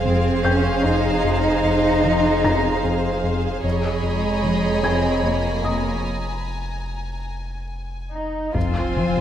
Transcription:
Already playing: F1 F2 G#4 C5 F5 C7
0.05 F2 C4
0.44 F2 C#4 G5 G6
0.84 F2 D#4
1.24 F2
1.64 F2
2.04 F3
2.44 F2 A#5 A#6
2.84 F2
3.24 F2
3.63 F1 F2 G#4 C#5 D#5 G#5 A#5 B5
4.03 F2 G#3
4.43 F3
4.83 F2 C4 G#5 G#6
5.23 F2 A#3
5.64 F2 D#5 D#6
8.13 D#4
8.55 F1 F2 C4 F4 C5 G#5, taiko, sub drop
8.96 F3
9.17 taiko

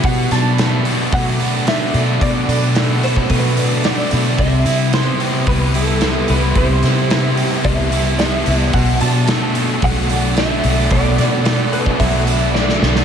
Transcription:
Already playing: B3 B5 D6
0.03 B2 A4 F#5, kick, open hi-hat
0.31 B2 F#3 D4 A5, snare, open hi-hat
0.58 A3 D4, snare, open hi-hat
0.84 B2 A4, open hi-hat
1.12 B2 F#3 A3 F#5, kick, open hi-hat
1.39 F#3 D4, open hi-hat
1.66 A3 D4 E5, snare, open hi-hat
1.93 B2 A3 D4, open hi-hat
2.21 B2 D5, kick, open hi-hat
2.48 B2 F#3 D4, open hi-hat
2.75 A3 D4, snare, open hi-hat
3.02 B2 A4 C5, open hi-hat
3.16 kick
3.30 B2 F#3 A3 B4, kick, open hi-hat
3.57 F#3 D4, open hi-hat
3.84 A3 D4 D5, snare, open hi-hat
4.11 B2 A3 D4, open hi-hat
4.38 C2 C3 G4 E5 C6, kick, open hi-hat
4.66 C3 G3 E4, open hi-hat
4.92 B3 E4 C5, snare, open hi-hat
5.20 C3 G4, open hi-hat
5.47 C2 G3 B3 B4, kick, open hi-hat
5.74 G3 E4 A4, open hi-hat
6.01 B3 E4, snare, open hi-hat
6.28 C2 B3 E4 B4, open hi-hat
6.55 C2 C3 C5 A5, kick, open hi-hat
6.83 C3 G3 E4, snare, open hi-hat
7.10 B3 E4, snare, open hi-hat
7.36 C3 G4, open hi-hat
7.64 C2 G3 B3 E5, kick, open hi-hat
7.91 G3 E4, open hi-hat
8.18 B3 E4 E5, snare, open hi-hat
8.46 C2 B3 E4, open hi-hat
8.63 D5
8.73 B1 B2 A4 F#5 B5 D6, kick, open hi-hat
9.00 B2 F#3 D4 A5, open hi-hat
9.28 A3 D4, snare, open hi-hat
9.53 B2 A4, open hi-hat
9.82 B1 F#3 A3 F#5, kick, open hi-hat
10.09 F#3 D4, open hi-hat
10.37 A3 D4 E5, snare, open hi-hat
10.63 B1 A3 D4, open hi-hat
10.90 B1 B2 D5, kick, open hi-hat
11.17 B2 F#3 D4, snare, open hi-hat
11.44 A3 D4, snare, open hi-hat
11.72 B2 A4 B4, open hi-hat
11.86 kick
11.99 B1 F#3 A3 E5, kick, open hi-hat
12.26 F#3 D4, open hi-hat
12.54 A3 D4 D5, snare
12.69 snare
12.82 B1 A3 D4, snare
12.95 snare

